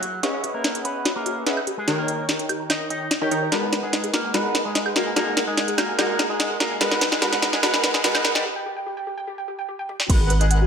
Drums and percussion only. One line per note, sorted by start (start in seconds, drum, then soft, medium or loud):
0.03 closed hi-hat medium
0.23 snare medium
0.23 closed hi-hat medium
0.44 closed hi-hat medium
0.64 snare medium
0.64 closed hi-hat medium
0.75 closed hi-hat medium
0.85 closed hi-hat medium
1.05 snare medium
1.05 closed hi-hat medium
1.26 closed hi-hat medium
1.47 snare medium
1.47 closed hi-hat medium
1.57 high woodblock medium
1.67 closed hi-hat medium
1.88 snare medium
1.88 closed hi-hat medium
2.08 closed hi-hat medium
2.29 snare medium
2.29 closed hi-hat medium
2.39 closed hi-hat medium
2.49 closed hi-hat medium
2.49 high woodblock medium
2.70 snare medium
2.70 closed hi-hat medium
2.70 high woodblock medium
2.90 closed hi-hat medium
3.11 snare medium
3.11 closed hi-hat medium
3.31 closed hi-hat medium
3.52 snare medium
3.52 closed hi-hat medium
3.73 snare medium
3.73 closed hi-hat medium
3.93 snare medium
3.93 closed hi-hat medium
4.04 closed hi-hat medium
4.14 snare medium
4.14 closed hi-hat medium
4.34 snare medium
4.34 closed hi-hat medium
4.55 snare medium
4.55 closed hi-hat medium
4.75 snare medium
4.75 closed hi-hat medium
4.86 high woodblock medium
4.96 snare medium
4.96 closed hi-hat medium
5.16 snare medium
5.16 closed hi-hat medium
5.37 snare medium
5.37 closed hi-hat medium
5.57 snare medium
5.57 closed hi-hat medium
5.68 closed hi-hat medium
5.78 snare medium
5.78 closed hi-hat medium
5.78 high woodblock medium
5.99 snare medium
5.99 closed hi-hat medium
5.99 high woodblock medium
6.19 snare medium
6.19 closed hi-hat medium
6.40 snare medium
6.40 closed hi-hat medium
6.60 snare medium
6.60 closed hi-hat medium
6.81 snare medium
6.81 closed hi-hat medium
6.91 snare medium
7.01 snare loud
7.01 closed hi-hat medium
7.12 snare medium
7.22 snare loud
7.22 closed hi-hat medium
7.33 snare medium
7.33 closed hi-hat medium
7.42 snare loud
7.42 closed hi-hat medium
7.53 snare medium
7.63 snare loud
7.63 closed hi-hat medium
7.74 snare medium
7.84 snare loud
7.84 closed hi-hat medium
7.94 snare medium
8.04 snare loud
8.04 closed hi-hat medium
8.15 snare medium
8.15 high woodblock medium
8.25 snare loud
8.25 closed hi-hat medium
8.35 snare medium
9.89 high tom medium
10.00 snare medium
10.10 kick loud
10.10 closed hi-hat medium
10.10 crash loud
10.30 closed hi-hat medium
10.41 closed hi-hat medium
10.51 closed hi-hat medium